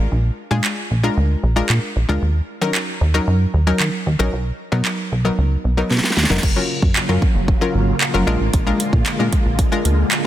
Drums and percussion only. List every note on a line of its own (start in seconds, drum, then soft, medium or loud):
0.64 clap loud
1.69 clap loud
2.75 clap loud
3.80 clap loud
4.85 clap loud
5.90 snare medium
5.97 snare medium
6.04 snare medium
6.10 snare medium
6.17 snare medium
6.23 snare medium
6.30 snare medium
6.37 snare medium
6.43 kick loud
6.43 crash medium
6.82 kick medium
6.96 clap loud
7.22 kick medium
7.48 kick medium
8.01 clap loud
8.54 kick loud
8.54 closed hi-hat loud
8.80 closed hi-hat medium
8.93 kick medium
9.06 clap loud
9.06 closed hi-hat loud
9.33 kick medium
9.33 closed hi-hat medium
9.59 kick medium
9.59 closed hi-hat medium
9.85 closed hi-hat medium
10.11 clap loud
10.11 closed hi-hat medium